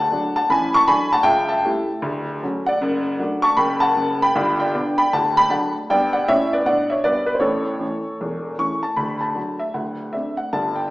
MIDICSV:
0, 0, Header, 1, 2, 480
1, 0, Start_track
1, 0, Key_signature, 2, "major"
1, 0, Tempo, 385604
1, 1572, Time_signature, 4, 2, 24, 8
1, 13573, End_track
2, 0, Start_track
2, 0, Title_t, "Upright piano"
2, 0, Program_c, 0, 0
2, 0, Control_c, 0, 64, 127
2, 0, Note_on_c, 0, 26, 73
2, 0, Note_on_c, 0, 38, 66
2, 0, Note_on_c, 0, 74, 64
2, 0, Note_on_c, 0, 78, 72
2, 0, Note_on_c, 0, 81, 101
2, 134, Note_on_c, 0, 57, 43
2, 145, Note_on_c, 0, 54, 53
2, 149, Control_c, 0, 64, 0
2, 155, Note_on_c, 0, 62, 57
2, 158, Note_off_c, 0, 38, 0
2, 162, Note_off_c, 0, 26, 0
2, 163, Note_off_c, 0, 74, 0
2, 398, Note_off_c, 0, 57, 0
2, 402, Note_off_c, 0, 78, 0
2, 405, Note_off_c, 0, 54, 0
2, 413, Note_off_c, 0, 62, 0
2, 429, Note_off_c, 0, 81, 0
2, 448, Note_on_c, 0, 81, 98
2, 466, Note_on_c, 0, 78, 72
2, 616, Note_off_c, 0, 78, 0
2, 619, Note_off_c, 0, 81, 0
2, 619, Note_on_c, 0, 33, 69
2, 623, Note_on_c, 0, 83, 90
2, 626, Note_on_c, 0, 45, 60
2, 645, Note_on_c, 0, 80, 82
2, 912, Note_off_c, 0, 80, 0
2, 921, Note_off_c, 0, 83, 0
2, 926, Note_on_c, 0, 85, 120
2, 944, Note_on_c, 0, 81, 94
2, 1024, Note_off_c, 0, 33, 0
2, 1028, Note_off_c, 0, 45, 0
2, 1088, Note_on_c, 0, 54, 44
2, 1090, Note_on_c, 0, 83, 112
2, 1092, Note_on_c, 0, 57, 53
2, 1095, Note_off_c, 0, 81, 0
2, 1097, Note_off_c, 0, 85, 0
2, 1098, Note_on_c, 0, 80, 82
2, 1099, Note_on_c, 0, 62, 58
2, 1353, Note_off_c, 0, 54, 0
2, 1356, Note_off_c, 0, 57, 0
2, 1361, Note_off_c, 0, 62, 0
2, 1377, Note_off_c, 0, 80, 0
2, 1395, Note_off_c, 0, 83, 0
2, 1401, Note_on_c, 0, 81, 112
2, 1419, Note_on_c, 0, 78, 81
2, 1533, Note_on_c, 0, 79, 116
2, 1538, Note_on_c, 0, 37, 91
2, 1542, Note_on_c, 0, 49, 78
2, 1554, Note_on_c, 0, 76, 84
2, 1572, Note_off_c, 0, 78, 0
2, 1574, Note_off_c, 0, 81, 0
2, 1797, Control_c, 0, 64, 127
2, 1844, Note_off_c, 0, 76, 0
2, 1849, Note_on_c, 0, 81, 84
2, 1856, Note_off_c, 0, 79, 0
2, 1874, Note_on_c, 0, 76, 65
2, 1960, Note_off_c, 0, 37, 0
2, 1962, Note_off_c, 0, 49, 0
2, 2054, Note_on_c, 0, 55, 55
2, 2057, Note_on_c, 0, 57, 57
2, 2060, Note_on_c, 0, 64, 59
2, 2069, Control_c, 0, 64, 0
2, 2317, Note_off_c, 0, 55, 0
2, 2319, Note_off_c, 0, 57, 0
2, 2321, Note_off_c, 0, 64, 0
2, 2519, Note_on_c, 0, 38, 87
2, 2524, Note_on_c, 0, 26, 69
2, 2772, Control_c, 0, 64, 127
2, 2932, Note_off_c, 0, 38, 0
2, 2935, Note_off_c, 0, 26, 0
2, 2960, Note_off_c, 0, 76, 0
2, 2997, Note_off_c, 0, 81, 0
2, 3018, Note_on_c, 0, 57, 49
2, 3022, Control_c, 0, 64, 0
2, 3025, Note_on_c, 0, 54, 52
2, 3025, Note_on_c, 0, 61, 61
2, 3280, Note_off_c, 0, 57, 0
2, 3285, Note_off_c, 0, 54, 0
2, 3285, Note_off_c, 0, 61, 0
2, 3317, Note_on_c, 0, 78, 95
2, 3343, Note_on_c, 0, 74, 81
2, 3499, Note_on_c, 0, 30, 77
2, 3504, Note_on_c, 0, 42, 97
2, 3714, Control_c, 0, 64, 127
2, 3903, Note_off_c, 0, 30, 0
2, 3906, Note_off_c, 0, 42, 0
2, 3970, Note_on_c, 0, 54, 52
2, 3980, Note_on_c, 0, 57, 54
2, 3981, Note_on_c, 0, 62, 58
2, 3984, Control_c, 0, 64, 0
2, 4234, Note_off_c, 0, 54, 0
2, 4238, Note_off_c, 0, 74, 0
2, 4241, Note_off_c, 0, 57, 0
2, 4242, Note_off_c, 0, 62, 0
2, 4261, Note_on_c, 0, 85, 113
2, 4275, Note_off_c, 0, 78, 0
2, 4279, Note_on_c, 0, 81, 92
2, 4440, Note_off_c, 0, 81, 0
2, 4440, Note_on_c, 0, 42, 82
2, 4440, Note_on_c, 0, 83, 95
2, 4444, Note_off_c, 0, 85, 0
2, 4445, Note_on_c, 0, 30, 84
2, 4458, Note_on_c, 0, 79, 70
2, 4734, Note_on_c, 0, 81, 112
2, 4737, Note_off_c, 0, 79, 0
2, 4749, Note_off_c, 0, 83, 0
2, 4758, Note_on_c, 0, 78, 88
2, 4852, Note_off_c, 0, 42, 0
2, 4855, Note_off_c, 0, 30, 0
2, 4932, Note_on_c, 0, 30, 84
2, 4937, Note_on_c, 0, 42, 78
2, 5202, Note_off_c, 0, 78, 0
2, 5224, Note_off_c, 0, 81, 0
2, 5257, Note_on_c, 0, 83, 102
2, 5269, Note_on_c, 0, 79, 85
2, 5315, Note_off_c, 0, 30, 0
2, 5318, Note_off_c, 0, 42, 0
2, 5422, Note_on_c, 0, 31, 81
2, 5431, Note_on_c, 0, 43, 85
2, 5645, Control_c, 0, 64, 127
2, 5699, Note_off_c, 0, 79, 0
2, 5721, Note_on_c, 0, 79, 84
2, 5726, Note_off_c, 0, 83, 0
2, 5745, Note_on_c, 0, 74, 65
2, 5825, Note_off_c, 0, 31, 0
2, 5830, Note_off_c, 0, 43, 0
2, 5902, Control_c, 0, 64, 0
2, 5903, Note_on_c, 0, 59, 55
2, 5905, Note_on_c, 0, 50, 53
2, 5906, Note_on_c, 0, 62, 69
2, 6163, Note_off_c, 0, 59, 0
2, 6165, Note_off_c, 0, 50, 0
2, 6165, Note_off_c, 0, 62, 0
2, 6177, Note_off_c, 0, 74, 0
2, 6193, Note_off_c, 0, 79, 0
2, 6198, Note_on_c, 0, 83, 102
2, 6211, Note_on_c, 0, 79, 78
2, 6367, Note_off_c, 0, 79, 0
2, 6372, Note_off_c, 0, 83, 0
2, 6389, Note_on_c, 0, 38, 75
2, 6389, Note_on_c, 0, 81, 99
2, 6396, Note_on_c, 0, 26, 76
2, 6398, Note_on_c, 0, 78, 73
2, 6615, Control_c, 0, 64, 127
2, 6668, Note_off_c, 0, 78, 0
2, 6684, Note_off_c, 0, 81, 0
2, 6687, Note_on_c, 0, 83, 124
2, 6693, Note_on_c, 0, 79, 77
2, 6790, Note_off_c, 0, 38, 0
2, 6793, Note_off_c, 0, 26, 0
2, 6839, Note_on_c, 0, 54, 50
2, 6840, Note_on_c, 0, 57, 53
2, 6847, Note_on_c, 0, 81, 83
2, 6849, Note_off_c, 0, 79, 0
2, 6850, Note_on_c, 0, 62, 54
2, 6857, Note_off_c, 0, 83, 0
2, 6860, Note_on_c, 0, 78, 71
2, 6861, Control_c, 0, 64, 0
2, 7106, Note_off_c, 0, 54, 0
2, 7107, Note_off_c, 0, 57, 0
2, 7114, Note_off_c, 0, 62, 0
2, 7138, Note_off_c, 0, 78, 0
2, 7153, Note_off_c, 0, 81, 0
2, 7344, Note_on_c, 0, 43, 77
2, 7346, Note_on_c, 0, 79, 97
2, 7356, Note_on_c, 0, 74, 81
2, 7378, Note_on_c, 0, 59, 69
2, 7574, Control_c, 0, 64, 127
2, 7627, Note_off_c, 0, 74, 0
2, 7630, Note_on_c, 0, 78, 96
2, 7642, Note_off_c, 0, 79, 0
2, 7647, Note_on_c, 0, 74, 76
2, 7723, Note_off_c, 0, 43, 0
2, 7743, Note_off_c, 0, 59, 0
2, 7806, Note_off_c, 0, 74, 0
2, 7809, Note_off_c, 0, 78, 0
2, 7822, Note_on_c, 0, 45, 68
2, 7822, Note_on_c, 0, 76, 107
2, 7823, Control_c, 0, 64, 0
2, 7827, Note_on_c, 0, 73, 81
2, 7851, Note_on_c, 0, 61, 71
2, 8102, Note_off_c, 0, 73, 0
2, 8121, Note_off_c, 0, 76, 0
2, 8129, Note_on_c, 0, 74, 86
2, 8142, Note_on_c, 0, 71, 60
2, 8202, Note_off_c, 0, 45, 0
2, 8219, Note_off_c, 0, 61, 0
2, 8278, Note_off_c, 0, 74, 0
2, 8283, Note_on_c, 0, 47, 62
2, 8293, Note_off_c, 0, 71, 0
2, 8293, Note_on_c, 0, 78, 92
2, 8297, Note_on_c, 0, 74, 84
2, 8310, Note_on_c, 0, 62, 73
2, 8577, Note_off_c, 0, 74, 0
2, 8586, Note_on_c, 0, 76, 73
2, 8596, Note_off_c, 0, 78, 0
2, 8605, Note_on_c, 0, 73, 68
2, 8670, Note_off_c, 0, 47, 0
2, 8687, Note_off_c, 0, 62, 0
2, 8763, Note_on_c, 0, 74, 96
2, 8765, Note_off_c, 0, 73, 0
2, 8767, Note_off_c, 0, 76, 0
2, 8767, Note_on_c, 0, 43, 64
2, 8775, Note_on_c, 0, 71, 67
2, 8788, Note_on_c, 0, 59, 61
2, 9024, Note_off_c, 0, 71, 0
2, 9043, Note_on_c, 0, 71, 79
2, 9071, Note_off_c, 0, 74, 0
2, 9147, Note_on_c, 0, 72, 54
2, 9153, Note_off_c, 0, 43, 0
2, 9165, Note_off_c, 0, 59, 0
2, 9172, Note_off_c, 0, 71, 0
2, 9207, Note_on_c, 0, 73, 81
2, 9211, Note_on_c, 0, 45, 65
2, 9216, Note_on_c, 0, 33, 67
2, 9230, Note_on_c, 0, 69, 66
2, 9231, Note_off_c, 0, 72, 0
2, 9485, Control_c, 0, 64, 127
2, 9637, Note_off_c, 0, 45, 0
2, 9639, Note_off_c, 0, 33, 0
2, 9705, Note_on_c, 0, 52, 45
2, 9711, Note_on_c, 0, 61, 39
2, 9714, Note_on_c, 0, 57, 44
2, 9749, Control_c, 0, 64, 0
2, 9976, Note_off_c, 0, 52, 0
2, 9981, Note_off_c, 0, 61, 0
2, 9983, Note_off_c, 0, 57, 0
2, 10214, Note_on_c, 0, 28, 56
2, 10219, Note_on_c, 0, 40, 63
2, 10621, Note_off_c, 0, 28, 0
2, 10624, Note_off_c, 0, 40, 0
2, 10632, Note_off_c, 0, 69, 0
2, 10670, Note_off_c, 0, 73, 0
2, 10686, Note_on_c, 0, 52, 43
2, 10693, Note_on_c, 0, 85, 81
2, 10696, Note_on_c, 0, 61, 45
2, 10702, Note_on_c, 0, 57, 46
2, 10952, Note_off_c, 0, 52, 0
2, 10959, Note_off_c, 0, 61, 0
2, 10964, Note_off_c, 0, 57, 0
2, 10988, Note_on_c, 0, 81, 78
2, 10997, Note_off_c, 0, 85, 0
2, 11159, Note_on_c, 0, 26, 56
2, 11159, Note_on_c, 0, 83, 75
2, 11168, Note_on_c, 0, 38, 69
2, 11169, Note_off_c, 0, 81, 0
2, 11404, Control_c, 0, 64, 127
2, 11461, Note_on_c, 0, 81, 67
2, 11470, Note_off_c, 0, 83, 0
2, 11573, Note_off_c, 0, 26, 0
2, 11579, Note_off_c, 0, 38, 0
2, 11631, Note_on_c, 0, 57, 39
2, 11639, Note_on_c, 0, 62, 37
2, 11644, Note_on_c, 0, 54, 43
2, 11672, Control_c, 0, 64, 0
2, 11901, Note_off_c, 0, 57, 0
2, 11907, Note_off_c, 0, 62, 0
2, 11911, Note_off_c, 0, 54, 0
2, 11943, Note_on_c, 0, 76, 69
2, 11949, Note_off_c, 0, 81, 0
2, 12126, Note_on_c, 0, 78, 58
2, 12127, Note_off_c, 0, 76, 0
2, 12129, Note_on_c, 0, 38, 58
2, 12133, Note_on_c, 0, 26, 55
2, 12365, Control_c, 0, 64, 127
2, 12540, Note_off_c, 0, 38, 0
2, 12541, Note_off_c, 0, 26, 0
2, 12606, Note_on_c, 0, 76, 68
2, 12610, Note_off_c, 0, 78, 0
2, 12620, Note_on_c, 0, 57, 40
2, 12620, Note_on_c, 0, 60, 35
2, 12624, Note_on_c, 0, 62, 44
2, 12632, Control_c, 0, 64, 0
2, 12883, Note_off_c, 0, 57, 0
2, 12883, Note_off_c, 0, 60, 0
2, 12885, Note_off_c, 0, 62, 0
2, 12912, Note_on_c, 0, 78, 73
2, 12914, Note_off_c, 0, 76, 0
2, 13092, Note_off_c, 0, 78, 0
2, 13105, Note_on_c, 0, 81, 85
2, 13108, Note_on_c, 0, 31, 67
2, 13112, Note_on_c, 0, 43, 61
2, 13339, Control_c, 0, 64, 127
2, 13389, Note_on_c, 0, 79, 65
2, 13404, Note_off_c, 0, 81, 0
2, 13511, Note_off_c, 0, 31, 0
2, 13513, Note_off_c, 0, 43, 0
2, 13570, Note_off_c, 0, 79, 0
2, 13573, End_track
0, 0, End_of_file